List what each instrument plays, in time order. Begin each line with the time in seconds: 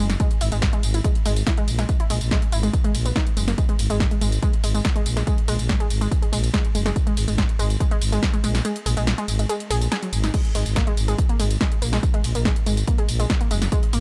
0.00 fm bass F#1
0.10 snare, closed hi-hat, tambourine
0.20 synth arpeggio sound G#3, kick, closed hi-hat, tambourine
0.31 closed hi-hat
0.41 fm bass G#1, synth arpeggio sound E4, open hi-hat, ride, tambourine
0.52 fm bass G#1, synth arpeggio sound G#3, closed hi-hat, tambourine
0.62 kick, snare, closed hi-hat
0.73 synth arpeggio sound G#3, closed hi-hat
0.83 fm bass G#1, open hi-hat, ride, tambourine
0.94 synth arpeggio sound E4, closed hi-hat, tambourine
1.04 synth arpeggio sound G#3, kick, closed hi-hat, tambourine
1.15 closed hi-hat
1.26 fm bass G#1, synth arpeggio sound G#3, open hi-hat, ride, tambourine
1.36 closed hi-hat, tambourine
1.47 synth arpeggio sound E4, kick, snare, closed hi-hat, tambourine
1.57 synth arpeggio sound G#3, closed hi-hat
1.68 fm bass A#1, open hi-hat, ride, tambourine
1.79 synth arpeggio sound G#3, snare, closed hi-hat, tambourine
1.89 kick, closed hi-hat, tambourine
2.00 synth arpeggio sound E4, closed hi-hat
2.10 fm bass A#1, synth arpeggio sound G#3, open hi-hat, ride, tambourine
2.21 fm bass A#1, closed hi-hat, tambourine
2.31 synth arpeggio sound G#3, kick, snare, closed hi-hat
2.42 closed hi-hat
2.52 fm bass G#1, synth arpeggio sound E4, open hi-hat, ride, tambourine
2.63 synth arpeggio sound G#3, closed hi-hat, tambourine
2.73 kick, closed hi-hat, tambourine
2.84 synth arpeggio sound G#3, closed hi-hat
2.95 fm bass A#1, open hi-hat, ride, tambourine
3.06 synth arpeggio sound B3, closed hi-hat, tambourine
3.16 synth arpeggio sound D#4, kick, snare, closed hi-hat
3.27 closed hi-hat
3.37 fm bass F#1, synth arpeggio sound G#3, open hi-hat, ride, tambourine
3.48 synth arpeggio sound A#3, snare, closed hi-hat, tambourine
3.58 synth arpeggio sound G#3, kick, closed hi-hat, tambourine
3.69 synth arpeggio sound G#3, closed hi-hat
3.79 fm bass G#1, open hi-hat, ride, tambourine
3.90 fm bass G#1, synth arpeggio sound G#3, closed hi-hat, tambourine
4.00 kick, snare, closed hi-hat
4.11 synth arpeggio sound G#3, closed hi-hat
4.21 fm bass G#1, synth arpeggio sound G#3, open hi-hat, ride, tambourine
4.32 closed hi-hat, tambourine
4.42 synth arpeggio sound G#3, kick, closed hi-hat, tambourine
4.53 closed hi-hat
4.64 fm bass G#1, synth arpeggio sound G#3, open hi-hat, ride, tambourine
4.74 synth arpeggio sound G#3, closed hi-hat, tambourine
4.85 kick, snare, closed hi-hat
4.96 synth arpeggio sound G#3, closed hi-hat
5.06 fm bass A#1, open hi-hat, ride, tambourine
5.17 synth arpeggio sound G#3, snare, closed hi-hat, tambourine
5.27 synth arpeggio sound G#3, kick, closed hi-hat, tambourine
5.38 closed hi-hat
5.48 fm bass A#1, synth arpeggio sound G#3, open hi-hat, ride, tambourine
5.59 fm bass A#1, closed hi-hat, tambourine
5.69 synth arpeggio sound G#3, kick, snare, closed hi-hat
5.80 synth arpeggio sound G#3, closed hi-hat
5.90 fm bass G#1, open hi-hat, ride, tambourine
6.01 synth arpeggio sound G#3, closed hi-hat, tambourine
6.11 kick, closed hi-hat, tambourine
6.22 synth arpeggio sound G#3, closed hi-hat
6.32 fm bass A#1, synth arpeggio sound G#3, open hi-hat, ride, tambourine
6.44 closed hi-hat, tambourine
6.54 synth arpeggio sound G#3, kick, snare, closed hi-hat
6.65 closed hi-hat
6.75 fm bass F#1, synth arpeggio sound G#3, open hi-hat, ride, tambourine
6.86 synth arpeggio sound G#3, snare, closed hi-hat, tambourine
6.96 kick, closed hi-hat, tambourine
7.07 synth arpeggio sound G#3, closed hi-hat
7.17 fm bass G#1, open hi-hat, ride, tambourine
7.28 fm bass G#1, synth arpeggio sound G#3, closed hi-hat, tambourine
7.38 synth arpeggio sound G#3, kick, snare, closed hi-hat
7.49 closed hi-hat
7.59 fm bass G#1, synth arpeggio sound G#3, open hi-hat, ride, tambourine
7.70 closed hi-hat, tambourine
7.80 synth arpeggio sound G#3, kick, closed hi-hat, tambourine
7.91 synth arpeggio sound G#3, closed hi-hat
8.01 fm bass G#1, open hi-hat, ride, tambourine
8.12 synth arpeggio sound G#3, closed hi-hat, tambourine
8.23 kick, snare, closed hi-hat, tambourine
8.33 synth arpeggio sound G#3, closed hi-hat
8.44 fm bass A#1, synth arpeggio sound G#3, open hi-hat, ride, tambourine
8.55 snare, closed hi-hat, tambourine
8.65 synth arpeggio sound G#3, closed hi-hat, tambourine
8.76 closed hi-hat
8.86 fm bass A#1, synth arpeggio sound G#3, open hi-hat, ride, tambourine
8.97 fm bass A#1, synth arpeggio sound G#3, closed hi-hat, tambourine
9.07 snare, closed hi-hat, tambourine
9.18 synth arpeggio sound G#3, closed hi-hat
9.28 fm bass G#1, open hi-hat, ride, tambourine
9.39 synth arpeggio sound G#3, closed hi-hat, tambourine
9.49 synth arpeggio sound G#3, closed hi-hat, tambourine
9.60 closed hi-hat
9.70 fm bass A#1, synth arpeggio sound G#4, open hi-hat, ride, tambourine
9.82 closed hi-hat, tambourine
9.92 synth arpeggio sound G#4, snare, closed hi-hat, tambourine
10.03 synth arpeggio sound F#3, closed hi-hat
10.13 fm bass G#1, open hi-hat, ride, tambourine
10.24 synth arpeggio sound D#4, snare, closed hi-hat, tambourine
10.34 synth arpeggio sound G#3, kick, closed hi-hat, tambourine, crash
10.45 closed hi-hat
10.55 fm bass G#1, synth arpeggio sound G#3, open hi-hat, ride, tambourine
10.66 fm bass G#1, closed hi-hat, tambourine
10.76 synth arpeggio sound A#3, kick, snare, closed hi-hat, tambourine
10.87 synth arpeggio sound G#3, closed hi-hat
10.97 fm bass G#1, open hi-hat, ride, tambourine
11.08 synth arpeggio sound G#3, closed hi-hat, tambourine
11.18 kick, closed hi-hat, tambourine
11.29 synth arpeggio sound A#3, closed hi-hat
11.40 fm bass G#1, synth arpeggio sound G#3, open hi-hat, ride, tambourine
11.51 closed hi-hat, tambourine
11.61 synth arpeggio sound G#3, kick, snare, closed hi-hat
11.72 closed hi-hat
11.82 fm bass A#1, synth arpeggio sound A#3, open hi-hat, ride, tambourine
11.93 synth arpeggio sound G#3, snare, closed hi-hat, tambourine
12.03 kick, closed hi-hat, tambourine
12.14 synth arpeggio sound G#3, closed hi-hat
12.24 fm bass A#1, open hi-hat, ride, tambourine
12.35 fm bass A#1, synth arpeggio sound A#3, closed hi-hat, tambourine
12.45 synth arpeggio sound G#3, kick, snare, closed hi-hat
12.56 closed hi-hat
12.66 fm bass G#1, synth arpeggio sound G#3, open hi-hat, ride, tambourine
12.77 closed hi-hat, tambourine
12.88 synth arpeggio sound A#3, kick, closed hi-hat, tambourine
12.98 synth arpeggio sound G#3, closed hi-hat
13.09 fm bass A#1, open hi-hat, ride, tambourine
13.20 synth arpeggio sound G#3, closed hi-hat, tambourine
13.30 kick, snare, closed hi-hat
13.41 synth arpeggio sound A#3, closed hi-hat
13.51 fm bass F#1, synth arpeggio sound G#3, open hi-hat, ride, tambourine
13.62 snare, closed hi-hat, tambourine
13.72 synth arpeggio sound G#3, kick, closed hi-hat, tambourine
13.83 closed hi-hat
13.93 fm bass G#1, synth arpeggio sound A#3, open hi-hat, ride, tambourine